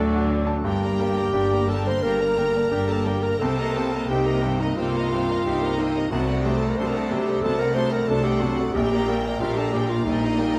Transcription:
Already playing: grand piano D2 A2 F#3 D4 A4, double bass section D2, french horn section D3, trombone section D3 A3, viola section F#3 D4, violin section D4 D5, trumpet F#4
0.00 cello section D3
0.14 grand piano F#4
0.30 grand piano D5
0.47 grand piano A5
0.64 double bass section G1, grand piano G2, cello section G2, viola section G3 G4, clarinet G4, violin section A#4 G5
0.83 viola section A#3 A#4, violin section D5 A#5
0.99 viola section G3 G4, grand piano A#3, violin section A#4 G5
1.16 viola section A#3 A#4, violin section D5 A#5
1.33 double bass section G1, cello section G2, viola section G3 G4, grand piano D4 G4, violin section A#4 G5
1.51 viola section A#3 A#4, violin section D5 A#5
1.68 grand piano D3, viola section G3 G4, clarinet A4, violin section A#4 G5 A5
1.86 viola section A#3 A#4, clarinet C5, violin section D5 A#5 C6
2.03 double bass section G1, cello section G2, viola section G3 G4, grand piano A#3, clarinet A#4, violin section A#4 G5 A#5
2.21 viola section A#3 A#4, violin section D5 A#5
2.37 grand piano D3, viola section G3 G4, violin section A#4 G5
2.54 viola section A#3 A#4, violin section D5 A#5
2.71 double bass section G1, cello section G2, viola section G3 G4, grand piano D4 G4, violin section A#4 G5
2.88 viola section A#3 A#4, clarinet A4, violin section D5 A5 A#5
3.05 viola section G3 G4, grand piano A#3, clarinet G4, violin section A#4 G5
3.22 viola section A#3 A#4, clarinet A#4, violin section D5 A#5
3.39 double bass section C2, grand piano C2, cello section C3, viola section C4 G4, clarinet A4, violin section C5 G5 A5
3.56 viola section A#3 A#4, violin section D#5 A#5
3.74 grand piano A#3, viola section C4 G4, violin section C5 G5
3.92 viola section A#3 A#4, violin section D#5 A#5
4.09 double bass section C2, cello section C3, viola section C4 G4, grand piano D#4 G4, clarinet G4, violin section C5 G5
4.25 viola section A#3 A#4, violin section D#5 A#5
4.42 grand piano G2, viola section C4 G4, violin section C5 G5
4.60 viola section A#3 A#4, clarinet D#4, violin section D#5 A#5
4.77 double bass section C2, cello section C3, grand piano A#3, viola section C4 G4, clarinet F4, violin section C5 F5 G5
4.94 viola section A#3 A#4, violin section D#5 A#5
5.12 grand piano G2, viola section C4 G4, violin section C5 G5
5.28 viola section A#3 A#4, violin section D#5 A#5
5.45 double bass section C2, cello section C3, viola section C4 G4, grand piano D#4 G4, violin section C5 G5
5.62 viola section A#3 A#4, violin section D#5 A#5
5.78 grand piano A#3, viola section C4 G4, clarinet D#4, violin section C5 D#5 G5
5.95 viola section A#3 A#4, violin section D#5 A#5
6.10 double bass section C2, grand piano C2, cello section C3, viola section F#3 D4, clarinet F#4, violin section C5 F#5 A5
6.27 viola section A3 C4, violin section D5 F#5
6.42 viola section F#3 D4, grand piano A3, clarinet G4, violin section G5
6.46 violin section C5 A5
6.57 viola section A3, clarinet A4, violin section A5
6.61 viola section C4, violin section D5 F#5
6.69 clarinet A#4, violin section A#5
6.77 double bass section C2, cello section C3, viola section F#3 D4, grand piano D4 A4, clarinet C5, violin section C5 A5 C6
6.87 clarinet A#4, violin section A#5
6.94 viola section A3 C4, clarinet A4, violin section D5 F#5
6.98 violin section A5
7.10 grand piano C3, viola section F#3 D4, clarinet G4, violin section C5 G5 A5
7.26 viola section A3 C4, violin section D5 F#5
7.42 double bass section C2, grand piano C2, cello section C3, viola section F#3 D4, clarinet A4, violin section C5 A5
7.59 viola section A3 C4, clarinet A#4, violin section D5 F#5 A#5
7.74 viola section F#3 D4, grand piano A3, clarinet C5, violin section C5 A5 C6
7.90 viola section A3 C4, clarinet A#4, violin section D5 F#5 A#5
8.07 double bass section C2, cello section C3, viola section F#3 D4, grand piano D4 A4, clarinet A4, violin section C5 A5
8.24 viola section A3 C4, clarinet G4, violin section D5 F#5 G5
8.40 grand piano C3, viola section F#3 D4, clarinet F#4, violin section C5 F#5 A5
8.57 viola section A3 C4, violin section D5 F#5
8.73 double bass section A#1, grand piano A#1, cello section A#2, viola section G3 D4, clarinet G4, violin section A#4 G5
8.91 viola section A#3 G4, violin section D5 A#5
9.07 viola section G3 D4, grand piano A#3, violin section A#4 G5
9.24 viola section A#3 G4, violin section D5 A#5
9.40 double bass section A#1, cello section A#2, viola section G3 D4, grand piano D4 G4, clarinet F4, violin section A#4 F5 G5
9.56 viola section A#3 G4, clarinet A4, violin section D5 A5 A#5
9.72 grand piano A#2, viola section G3 D4, clarinet G4, violin section A#4 G5
9.89 viola section A#3 G4, clarinet F4, violin section F5 A#5
9.93 violin section D5
10.05 double bass section A#1, grand piano A#1, cello section A#2, viola section G3 D4, clarinet D#4, violin section A#4 D#5 G5
10.22 viola section A#3 G4, violin section D5 A#5
10.38 viola section G3 D4, grand piano A#3, violin section A#4 G5
10.55 viola section A#3 G4, violin section D5 A#5

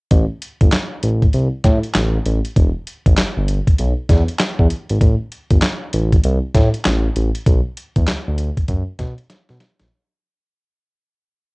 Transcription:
0.11 analog synth bass A1, kick, closed hi-hat
0.42 closed hi-hat
0.61 analog synth bass G1, kick, closed hi-hat
0.72 snare, clap, closed hi-hat
1.03 analog synth bass A1, closed hi-hat
1.22 kick, closed hi-hat
1.33 analog synth bass C2, closed hi-hat
1.64 analog synth bass A2, kick, snare, closed hi-hat
1.83 closed hi-hat
1.95 analog synth bass A1, snare, clap, closed hi-hat
2.26 analog synth bass A1, closed hi-hat
2.45 closed hi-hat
2.56 analog synth bass E1, kick, closed hi-hat
2.87 closed hi-hat
3.06 analog synth bass A1, kick, closed hi-hat
3.18 analog synth bass G1, snare, clap, closed hi-hat
3.37 analog synth bass G1
3.48 closed hi-hat
3.67 kick, closed hi-hat
3.79 analog synth bass B1, closed hi-hat
4.09 analog synth bass E2, kick, snare, closed hi-hat
4.29 closed hi-hat
4.40 snare, clap, closed hi-hat
4.59 analog synth bass E2, kick
4.70 closed hi-hat
4.90 analog synth bass G#1, closed hi-hat
5.01 analog synth bass A1, kick, closed hi-hat
5.32 closed hi-hat
5.51 analog synth bass G1, kick, closed hi-hat
5.62 snare, clap, closed hi-hat
5.93 analog synth bass A1, closed hi-hat
6.12 kick, closed hi-hat
6.24 analog synth bass C2, closed hi-hat
6.54 analog synth bass A2, kick, snare, closed hi-hat
6.74 closed hi-hat
6.85 analog synth bass A1, snare, clap, closed hi-hat
7.16 analog synth bass A1, closed hi-hat
7.35 closed hi-hat
7.46 analog synth bass B1, kick, closed hi-hat
7.77 closed hi-hat
7.96 analog synth bass E2, kick, closed hi-hat
8.07 analog synth bass D2, snare, clap, closed hi-hat
8.28 analog synth bass D2
8.38 closed hi-hat
8.57 kick, closed hi-hat
8.68 analog synth bass F#2, kick, closed hi-hat
8.99 analog synth bass B2, kick, snare, closed hi-hat
9.18 closed hi-hat
9.30 snare, closed hi-hat
9.49 analog synth bass B2, snare
9.60 snare, closed hi-hat
9.79 analog synth bass A#1, snare, closed hi-hat

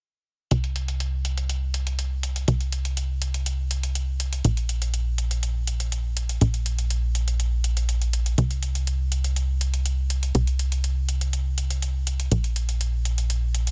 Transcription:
0.51 analog synth bass C2, closed hi-hat
0.64 closed hi-hat
0.76 closed hi-hat
0.88 closed hi-hat
1.00 closed hi-hat
1.25 closed hi-hat
1.38 closed hi-hat
1.49 closed hi-hat
1.74 closed hi-hat
1.87 closed hi-hat
1.99 closed hi-hat
2.23 closed hi-hat
2.36 closed hi-hat
2.48 analog synth bass C2, closed hi-hat
2.61 closed hi-hat
2.72 closed hi-hat
2.85 closed hi-hat
2.97 closed hi-hat
3.22 closed hi-hat
3.34 closed hi-hat
3.46 closed hi-hat
3.71 closed hi-hat
3.83 closed hi-hat
3.95 closed hi-hat
4.20 closed hi-hat
4.33 closed hi-hat
4.45 analog synth bass A#1, closed hi-hat
4.57 closed hi-hat
4.69 closed hi-hat
4.82 closed hi-hat
4.94 closed hi-hat
5.18 closed hi-hat
5.31 closed hi-hat
5.43 closed hi-hat
5.67 closed hi-hat
5.80 closed hi-hat
5.92 closed hi-hat
6.17 closed hi-hat
6.29 closed hi-hat
6.41 analog synth bass A#1, closed hi-hat
6.54 closed hi-hat
6.66 closed hi-hat
6.79 closed hi-hat
6.90 closed hi-hat
7.15 closed hi-hat
7.28 closed hi-hat
7.40 closed hi-hat
7.64 closed hi-hat
7.77 closed hi-hat
7.89 closed hi-hat
8.02 closed hi-hat
8.13 closed hi-hat
8.26 closed hi-hat
8.38 analog synth bass C2, closed hi-hat
8.51 closed hi-hat
8.63 closed hi-hat
8.75 closed hi-hat
8.87 closed hi-hat
9.12 closed hi-hat
9.24 closed hi-hat
9.36 closed hi-hat
9.61 closed hi-hat
9.74 closed hi-hat
9.86 closed hi-hat
10.10 closed hi-hat
10.23 closed hi-hat
10.35 analog synth bass C2, closed hi-hat
10.47 closed hi-hat
10.59 closed hi-hat
10.72 closed hi-hat
10.84 closed hi-hat
11.09 closed hi-hat
11.21 closed hi-hat
11.33 closed hi-hat
11.58 closed hi-hat
11.71 closed hi-hat
11.82 closed hi-hat
12.07 closed hi-hat
12.20 closed hi-hat
12.31 analog synth bass A#1, closed hi-hat
12.44 closed hi-hat
12.56 closed hi-hat
12.69 closed hi-hat
12.81 closed hi-hat
13.05 closed hi-hat
13.18 closed hi-hat
13.30 closed hi-hat
13.55 closed hi-hat
13.67 closed hi-hat

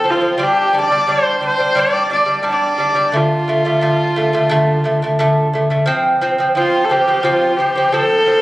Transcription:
Already playing: horsehead fiddle A4
0.04 lute F3 C4
0.11 horsehead fiddle F4
0.21 lute F3 C4
0.38 lute G3 D4
0.44 horsehead fiddle G4
0.73 lute G3 D4
0.79 horsehead fiddle D5
0.90 lute G3 D4
1.07 lute G3 D4, horsehead fiddle C5
1.41 lute G3 D4
1.46 horsehead fiddle C5
1.59 lute G3 D4
1.75 lute G3 D4, horsehead fiddle D5
2.10 lute G3 D4, horsehead fiddle D5
2.26 lute G3 D4
2.43 lute G3 D4
2.50 horsehead fiddle D5
2.78 lute G3 D4
2.95 lute G3 D4
3.12 lute D3 A3
3.17 horsehead fiddle F4
3.48 lute D3 A3
3.65 lute D3 A3
3.81 lute D3 A3
4.16 lute D3 A3
4.33 lute D3 A3
4.50 lute D3 A3
4.84 lute D3 A3
5.02 lute D3 A3
5.19 lute D3 A3
5.54 lute D3 A3
5.70 lute D3 A3
5.86 lute F3 C4
6.21 lute F3 C4
6.38 lute F3 C4
6.55 lute F3 C4, horsehead fiddle F4
6.85 horsehead fiddle A4
6.90 lute F3 C4, horsehead fiddle G4
7.07 lute F3 C4
7.23 lute F3 C4, horsehead fiddle F4
7.57 lute F3 C4, horsehead fiddle G4
7.75 lute F3 C4
7.92 lute F3 C4, horsehead fiddle A4
8.26 lute F3 C4

